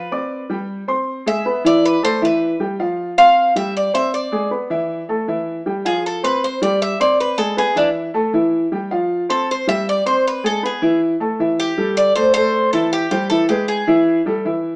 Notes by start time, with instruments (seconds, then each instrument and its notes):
Already playing: cuban tres B4
0.12 grand piano C4 D5 D6
0.50 grand piano G3 G4 G5
0.88 grand piano C4 C5 C6
1.26 grand piano G#3 G#4 G#5, cuban tres E5
1.45 grand piano B3 B4 B5
1.64 grand piano E3 E4 E5, cuban tres D5
1.85 cuban tres B4
2.03 grand piano A3 A4 A5, cuban tres C5
2.22 grand piano E3 E4 E5, cuban tres B4
2.60 grand piano G3 G4 G5
2.79 grand piano F3 F4 F5
3.18 grand piano C4 C5 C6, cuban tres F5
3.56 grand piano G3 G4 G5, cuban tres E5
3.77 cuban tres D5
3.94 grand piano C4 C5 C6, cuban tres E5
4.14 cuban tres D5
4.32 grand piano G#3 G#4 G#5
4.51 grand piano B3 B4 B5
4.70 grand piano E3 E4 E5
5.09 grand piano A3 A4 A5
5.28 grand piano E3 E4 E5
5.66 grand piano G3 G4 G5
5.85 grand piano F3 F4 F5, cuban tres G#4
6.06 cuban tres A4
6.23 grand piano C4 C5 C6, cuban tres B4
6.44 cuban tres C5
6.62 grand piano G3 G4 G5, cuban tres D5
6.82 cuban tres E5
7.00 grand piano C4 C5 C6, cuban tres D5
7.20 cuban tres B4
7.38 grand piano G#3 G#4 G#5, cuban tres A4
7.57 grand piano B3 B4 B5, cuban tres G#4
7.76 grand piano E3 E4 E5, cuban tres D4
8.14 grand piano A3 A4 A5
8.33 grand piano E3 E4 E5
8.72 grand piano G3 G4 G5
8.91 grand piano F3 F4 F5
9.29 grand piano C4 C5 C6, cuban tres A4
9.51 cuban tres C5
9.67 grand piano G3 G4 G5, cuban tres E5
9.89 cuban tres D5
10.06 grand piano C4 C5 C6, cuban tres C5
10.27 cuban tres B4
10.44 grand piano G#3 G#4 G#5, cuban tres A4
10.63 grand piano B3 B4 B5, cuban tres G#4
10.82 grand piano E3 E4 E5
11.20 grand piano A3 A4 A5
11.39 grand piano E3 E4 E5
11.60 cuban tres G4
11.78 grand piano G3 G4 A4
11.97 cuban tres D5
12.16 grand piano A3 A4 C5, cuban tres C5
12.34 grand piano A3 A4 C5, cuban tres C5
12.73 grand piano E3 E4 E5, cuban tres A4
12.93 cuban tres G4
13.11 grand piano G3 G4 C5, cuban tres G4
13.30 grand piano E3 E4 E5, cuban tres A4
13.49 grand piano G#3 G#4 B4, cuban tres G4
13.68 cuban tres G#4
13.87 grand piano E3 E4 E5
14.26 grand piano G3 G4 A4
14.45 grand piano E3 E4 E5